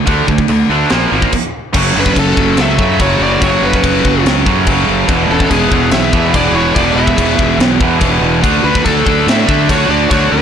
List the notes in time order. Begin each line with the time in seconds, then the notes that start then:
0.06 D2 D3 A3 D4, kick, china
0.27 D2 D3 A3, kick
0.38 kick
0.48 D2 D3 A3, china
0.69 D2 D3 A3 D4
0.90 A#1 A#2 F3 A#3, snare, china
1.11 G#1 A#2 F3 A#3
1.22 kick
1.32 kick, crash
1.73 F#1 F#2 C#3 F#3 C#4 A4, kick, crash
1.95 F#1 D4
2.00 B4
2.06 kick
2.16 F#1 C#4 A4, kick, crash
2.36 F#1 F#2 C#3 F#3, kick
2.57 C#2 A4, snare, crash
2.61 E5
2.77 F#2 C#3 F#3, kick
2.98 F#1 F#2 C#3 F#3 F#4 C#5, kick, crash
3.20 F#1 F#4 D5
3.40 F#1 F#2 C#3 F#3 F#4 C#5, kick, crash
3.62 F#1 F#4 B4
3.73 kick
3.84 F#1, kick, crash
4.04 F#1 F#2 C#3 F#3, kick
4.26 C#2, snare, crash
4.46 F#2 C#3 F#3, kick
4.66 F#1 F#2 C#3 F#3, kick, crash
4.88 F#1
5.07 E1 E2 B2 E3 B3 G#4, kick, crash
5.29 E1 C#4 A4
5.40 kick
5.51 E1 B3 G#4, kick, crash
5.70 E1 E2 B2 E3, kick
5.91 B1 G#4 E5, snare, crash
6.13 E2 B2 E3, kick
6.34 E1 E2 B2 E3 G#4 D5, kick, crash
6.52 E1 E4 C#5
6.75 E1 E2 B2 E3 D5, kick, crash
6.79 G#4
6.95 E1 G#4 E5
7.07 kick
7.18 E1, kick, crash
7.38 E1 E2 B2 E3, kick
7.59 B1, snare, crash
7.80 E2 B2 E3, kick
8.00 E1 E2 B2 E3, kick, crash
8.21 E1
8.42 D2 D3 F#3 A3 D4 A4, kick, crash
8.64 D2 D4 B4
8.75 kick
8.85 D2 D4 A4, kick, crash
9.06 D2 D3 A3 D4, kick
9.27 A2 A4 E5, snare, crash
9.47 D3 A3 D4, kick
9.68 D2 D3 A3 D4 F#4 C#5, kick, crash
9.89 D2 F#4 D5
10.09 D2 D3 A3 D4 F#4 C#5, kick, crash
10.32 D2 D4 B4